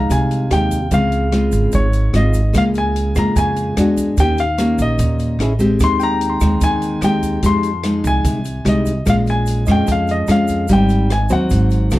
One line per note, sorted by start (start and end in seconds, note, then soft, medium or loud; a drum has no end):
0.00 0.47 G#3 medium
0.00 0.48 D#4 medium
0.00 0.20 F5 medium
0.00 0.11 A#5 medium
0.09 0.48 C2 medium
0.09 0.89 C3 medium
0.09 0.53 G#5 medium
0.09 kick medium
0.09 closed hi-hat soft
0.09 shaker medium
0.31 closed hi-hat soft
0.31 shaker soft
0.50 0.89 D#2 loud
0.50 0.78 G#3 medium
0.50 0.78 D#4 soft
0.50 0.78 G4 medium
0.50 0.94 G5 medium
0.50 cross-stick medium
0.50 closed hi-hat soft
0.71 kick soft
0.71 closed hi-hat soft
0.71 shaker medium
0.91 1.49 C#2 medium
0.91 1.71 C#3 medium
0.91 1.29 G#3 medium
0.91 1.29 C4 medium
0.91 1.29 F4 medium
0.91 1.70 F5 medium
0.91 kick medium
0.91 closed hi-hat soft
0.91 shaker medium
1.12 closed hi-hat soft
1.12 shaker soft
1.32 1.87 G#3 medium
1.32 1.87 C4 medium
1.32 1.87 F4 medium
1.32 cross-stick medium
1.32 closed hi-hat soft
1.52 1.72 G#1 medium
1.52 kick soft
1.52 closed hi-hat soft
1.52 shaker medium
1.72 2.11 G#1 medium
1.72 2.52 G#2 medium
1.72 2.16 C#5 medium
1.72 kick medium
1.72 closed hi-hat soft
1.72 shaker medium
1.93 closed hi-hat soft
1.93 shaker soft
2.13 2.52 G#1 loud
2.13 2.40 G#3 medium
2.13 2.40 C4 medium
2.13 2.40 F4 medium
2.13 2.57 D#5 medium
2.13 cross-stick medium
2.13 closed hi-hat soft
2.34 kick soft
2.34 closed hi-hat soft
2.34 shaker medium
2.53 3.11 C#2 loud
2.53 3.33 C#3 medium
2.53 3.12 G#3 medium
2.53 3.12 A#3 medium
2.53 3.12 F4 medium
2.53 kick medium
2.53 cross-stick medium
2.53 closed hi-hat soft
2.53 shaker medium
2.58 2.63 F5 medium
2.74 3.18 G#5 medium
2.74 closed hi-hat soft
2.74 shaker soft
2.96 closed hi-hat soft
3.15 3.35 F2 medium
3.15 3.74 G#3 medium
3.15 3.74 A#3 medium
3.15 3.74 F4 medium
3.15 3.38 A#5 medium
3.15 kick soft
3.15 cross-stick medium
3.15 closed hi-hat soft
3.15 shaker medium
3.36 3.74 F2 medium
3.36 3.75 C#3 medium
3.36 3.88 G#5 medium
3.36 4.21 G#5 medium
3.36 kick medium
3.36 closed hi-hat soft
3.36 shaker medium
3.56 closed hi-hat soft
3.56 shaker soft
3.77 4.15 E2 loud
3.77 4.16 G#3 medium
3.77 4.16 D4 medium
3.77 4.16 F#4 medium
3.77 cross-stick medium
3.77 closed hi-hat soft
3.77 shaker medium
3.97 kick soft
3.97 closed hi-hat soft
3.97 shaker medium
4.17 4.74 D#2 medium
4.17 4.98 D#3 medium
4.17 4.44 A#3 medium
4.17 4.44 C#4 medium
4.17 4.45 G4 medium
4.17 4.40 G5 medium
4.17 kick medium
4.17 closed hi-hat soft
4.17 shaker medium
4.38 4.81 F5 medium
4.38 closed hi-hat soft
4.38 shaker soft
4.58 5.36 A#3 medium
4.58 5.37 C#4 medium
4.58 5.37 G4 medium
4.58 cross-stick medium
4.58 closed hi-hat soft
4.58 shaker medium
4.78 4.97 A#1 medium
4.78 5.58 D#5 medium
4.78 kick soft
4.78 closed hi-hat soft
4.78 shaker medium
4.99 5.37 D#2 medium
4.99 5.38 A#2 medium
4.99 kick medium
4.99 closed hi-hat soft
4.99 shaker medium
5.19 closed hi-hat soft
5.19 shaker soft
5.39 5.77 A1 medium
5.39 5.52 C#4 medium
5.39 5.52 E4 medium
5.39 5.52 G#4 medium
5.39 cross-stick medium
5.39 closed hi-hat soft
5.59 6.38 G#3 medium
5.59 6.38 C4 medium
5.59 6.38 G4 medium
5.59 kick soft
5.59 closed hi-hat soft
5.59 shaker medium
5.80 6.37 D#2 medium
5.80 6.60 D#3 medium
5.80 kick medium
5.80 cross-stick medium
5.80 closed hi-hat soft
5.80 shaker medium
5.84 6.03 C6 loud
6.00 6.51 G5 medium
6.00 6.65 A#5 loud
6.00 closed hi-hat soft
6.00 shaker soft
6.14 6.64 A#5 soft
6.21 closed hi-hat soft
6.30 6.77 C6 soft
6.40 6.60 D#2 medium
6.40 6.99 G#3 medium
6.40 6.99 C4 medium
6.40 kick soft
6.40 cross-stick medium
6.40 closed hi-hat soft
6.40 shaker medium
6.61 6.99 D#2 medium
6.61 7.41 D#3 medium
6.61 7.01 G#5 loud
6.61 kick medium
6.61 closed hi-hat soft
6.61 shaker medium
6.82 closed hi-hat soft
6.82 shaker soft
7.01 7.40 D#2 loud
7.01 7.42 G#3 medium
7.01 7.42 C4 medium
7.01 7.42 G4 medium
7.01 7.45 G5 medium
7.01 cross-stick medium
7.01 closed hi-hat soft
7.01 shaker medium
7.23 kick soft
7.23 closed hi-hat soft
7.23 shaker medium
7.42 8.00 F2 medium
7.42 8.22 F3 medium
7.42 7.69 G#3 medium
7.42 7.70 D#4 medium
7.42 7.70 G4 medium
7.42 8.02 C6 loud
7.42 kick medium
7.42 closed hi-hat soft
7.42 shaker medium
7.63 closed hi-hat soft
7.63 shaker soft
7.83 8.39 G#3 medium
7.83 8.39 D#4 medium
7.83 cross-stick medium
7.83 closed hi-hat soft
8.04 8.23 C2 loud
8.04 8.69 G#5 loud
8.04 kick soft
8.04 closed hi-hat soft
8.04 shaker medium
8.24 8.62 C2 medium
8.24 9.04 C3 medium
8.24 kick medium
8.24 closed hi-hat soft
8.24 shaker medium
8.45 closed hi-hat soft
8.45 shaker soft
8.65 9.03 C2 loud
8.65 8.91 G#3 medium
8.65 8.91 D#4 medium
8.65 8.92 G4 medium
8.65 9.09 D#5 medium
8.65 cross-stick medium
8.65 closed hi-hat soft
8.86 kick soft
8.86 closed hi-hat soft
8.86 shaker medium
9.06 9.64 A#1 medium
9.06 9.85 A#2 medium
9.06 9.64 G#3 medium
9.06 9.64 C#4 medium
9.06 9.64 F4 medium
9.06 9.15 F5 medium
9.06 kick medium
9.06 cross-stick medium
9.06 closed hi-hat soft
9.06 shaker medium
9.26 9.70 G#5 medium
9.26 closed hi-hat soft
9.26 shaker soft
9.46 closed hi-hat soft
9.46 shaker medium
9.66 9.86 F2 medium
9.66 10.25 G#3 medium
9.66 10.25 C#4 medium
9.66 10.25 F4 medium
9.66 10.18 D#5 soft
9.66 kick soft
9.66 cross-stick medium
9.66 closed hi-hat soft
9.66 shaker medium
9.71 9.90 G5 medium
9.86 10.26 F2 medium
9.86 10.66 F3 medium
9.86 kick medium
9.86 closed hi-hat soft
9.86 shaker medium
9.92 10.11 F5 medium
10.07 closed hi-hat soft
10.07 shaker soft
10.11 10.29 D#5 medium
10.27 10.66 F2 loud
10.27 10.66 G#3 medium
10.27 10.66 C#4 medium
10.27 10.66 F4 medium
10.27 cross-stick medium
10.27 closed hi-hat soft
10.27 shaker medium
10.31 10.72 F5 medium
10.48 kick soft
10.48 closed hi-hat soft
10.48 shaker medium
10.68 11.26 G#1 medium
10.68 11.49 G#2 medium
10.68 11.10 G3 medium
10.68 11.10 C4 medium
10.68 11.10 D#4 medium
10.68 kick medium
10.68 closed hi-hat soft
10.68 shaker medium
10.73 11.13 G5 medium
10.89 closed hi-hat soft
10.89 shaker soft
11.10 11.32 G#5 medium
11.10 cross-stick medium
11.10 closed hi-hat soft
11.29 11.49 D#2 medium
11.29 11.88 F#3 medium
11.29 11.88 C4 medium
11.29 11.68 C5 soft
11.29 11.99 F#5 medium
11.29 kick soft
11.29 closed hi-hat soft
11.29 shaker medium
11.50 11.89 G#1 medium
11.50 11.99 G#2 medium
11.50 kick medium
11.50 closed hi-hat soft
11.50 shaker medium
11.70 closed hi-hat soft
11.70 shaker soft
11.91 11.99 C2 loud
11.91 11.99 F#3 medium
11.91 11.99 A3 medium
11.91 11.99 C4 medium
11.91 cross-stick medium
11.91 closed hi-hat soft
11.91 shaker medium